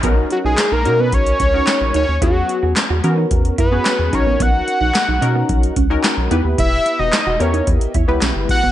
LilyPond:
<<
  \new Staff \with { instrumentName = "Analog synth lead" } { \time 4/4 \key b \major \tempo 4 = 110 r8 fis'16 gis'8 ais'8 b'16 cis''4. cis''8 | fis'4 r4. b'4 cis''8 | fis''2~ fis''8 r4. | e''8. dis''8. cis''8 r4. fis''8 | }
  \new Staff \with { instrumentName = "Analog polysynth" } { \time 4/4 \key b \major <cis' dis' fis' ais'>4~ <cis' dis' fis' ais'>16 r16 <cis' dis' fis' ais'>4 r16 <cis' dis' fis' ais'>4 r16 | <b cis' fis' gis'>4~ <b cis' fis' gis'>16 r16 <b cis' fis' ais'>4 r16 <b cis' fis' gis'>8. <cis' dis' fis' ais'>8~ | <cis' dis' fis' ais'>4 r8 <cis' dis' fis' ais'>4 r16 <cis' dis' fis' ais'>8. <b e' g' b'>8~ | <b e' g' b'>4 r8 <b e' g' ais'>4 r16 <b e' g' b'>4 r16 | }
  \new Staff \with { instrumentName = "Clean electric guitar" } { \time 4/4 \key b \major b16 r8 dis'16 r16 dis'16 r16 b16 r8 cis'16 r8. dis'16 r16 | e'16 r8 fis'16 r16 fis'16 r16 dis'16 r8 e'16 r16 cis'16 r8 b16 | b16 r8 dis'16 r16 dis'16 r16 b16 r8 cis'16 r8. dis'16 r16 | e'16 r8 fis'16 r16 fis'16 r16 dis'16 r8 e'16 r16 cis'16 r8 b16 | }
  \new Staff \with { instrumentName = "Analog synth bass" } { \clef bass \time 4/4 \key b \major b,,8 r16 b,,16 r16 b,,16 b,8 b,,8 cis,8 r16 ais,,16 d,16 dis,16 | e,8 r16 e,16 r16 e,16 e8 e,8 fis,8 r16 e,16 b,,16 ais,,16 | b,,8 r16 b,,16 r16 b,,16 b,8 b,,8 cis,8 r16 b,,16 e,16 dis,16 | e,,8 r16 e,,16 r16 e,,16 e,8 e,16 r16 e,16 cis,16 b,,16 g,,16 r16 fis,,16 | }
  \new DrumStaff \with { instrumentName = "Drums" } \drummode { \time 4/4 <hh bd>8 hh8 <hc hh sn>8 hh8 <hh bd>16 hh16 <hh bd>8 <hc hh sn>8 hh8 | <hh bd>8 hh8 <hc hh sn>8 hh8 <hh bd>16 hh16 <hh bd>8 <hc hh sn>8 <hh bd>8 | <hh bd>8 hh8 <hc hh sn>8 hh8 <hh bd>16 hh16 <hh bd>8 <hc hh sn>8 hh8 | <hh bd>8 hh8 <hc hh sn>8 hh16 hh16 <hh bd>16 hh16 <hh bd>8 <hc hh sn>8 <hh bd>8 | }
>>